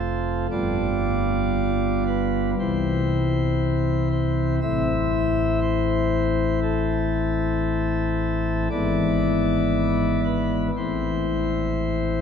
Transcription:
Already playing: F1 F2 A3 C4 F4 A4
0.51 G1 G2 G3 B3 F4 D5
2.07 B4
2.59 C2 C3 E3 C4 E4 C5
4.12 C5
4.61 A1 A2 E3 C4 E4 E5
5.61 C5
6.62 A4
8.70 G#1 G#2 E3 B3 E4 D5
10.24 B4
10.76 A1 A2 E3 C4 E4 C5

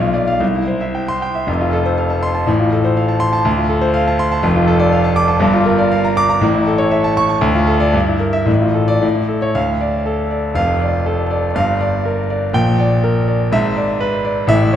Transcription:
Already playing: B1
0.01 F4
0.14 D5
0.27 F5
0.41 C2
0.55 E4
0.67 C5
0.81 E5
0.95 G5
1.08 C6
1.22 G5
1.35 E5
1.47 F1 F2
1.61 F4
1.73 A4
1.86 C5
1.98 F5
2.10 A5
2.23 C6
2.35 A5
2.46 A1 A2
2.60 F4
2.72 A4
2.84 C5
2.97 F5
3.08 A5
3.20 C6
3.33 A5
3.45 D2
3.57 F4
3.69 A4
3.81 C5
3.94 F5
4.07 A5
4.19 C6
4.32 A5
4.43 F1 F2
4.56 F4
4.68 A4
4.80 D5
4.92 F5
5.04 A5
5.16 D6
5.28 A5
5.40 G1 G2
5.53 F4
5.66 A#4
5.78 D5
5.92 F5
6.04 A#5
6.17 D6
6.29 A#5
6.41 A1 A2
6.54 E4
6.67 A4
6.78 C#5
6.91 E5
7.04 A5
7.17 C#6
7.29 A5
7.41 D2
7.55 F4
7.67 A4
7.80 D5
7.94 G2
8.07 E4
8.20 A#4
8.33 E5
8.46 A1 A2
8.61 F4
8.74 A4
8.88 D5
9.02 A2
9.15 E4
9.29 A4
9.42 C#5
9.55 D2 F5
9.81 D5
10.06 A4
10.31 D5
10.55 F1 F2 F5
10.81 D5
11.06 A4
11.31 D5
11.55 G1 G2 F5
11.81 D5
12.05 A#4
12.30 D5
12.53 A#1 A#2 G5
12.79 D5
13.04 A#4
13.28 D5
13.52 G#1 G#2 E5
13.76 D5
14.01 B4
14.25 D5
14.47 A1 A2 E5
14.73 C#5

